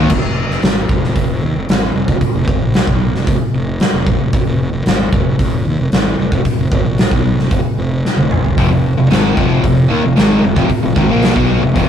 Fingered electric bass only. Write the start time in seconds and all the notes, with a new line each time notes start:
0.10 F1
0.24 F1
0.49 F1
0.62 G#1
0.89 F1
1.16 F1
1.43 D#2
1.56 F1
1.69 G#1
1.95 F1
2.08 F1
2.21 muted fingered electric bass stroke
2.35 F1
2.48 G#1
2.62 A#1
2.88 B1
3.13 F1
3.27 F1
3.40 muted fingered electric bass stroke
3.53 F1
3.94 F1
4.07 A#1
4.19 F1
4.33 F1
4.46 F1
4.73 F1
4.86 G#1
5.12 F1
5.39 F1
5.65 D#2
5.79 F1
5.92 G#1
6.19 F1
6.32 F1
6.46 muted fingered electric bass stroke
6.59 F1
6.72 G#1
6.85 A#1
7.11 B1
7.38 F1
7.51 F1
7.64 muted fingered electric bass stroke
7.78 F1
8.16 F1
8.31 A#1
8.44 F1
8.58 F1
8.70 F1
8.97 F1
9.10 G#1
9.37 F1
9.64 F1
9.90 D#2
10.04 F1
10.17 G#1
10.44 F1
10.56 F1
10.70 muted fingered electric bass stroke
10.84 F1
10.96 G#1
11.10 A#1
11.36 B1
11.63 F1
11.76 F1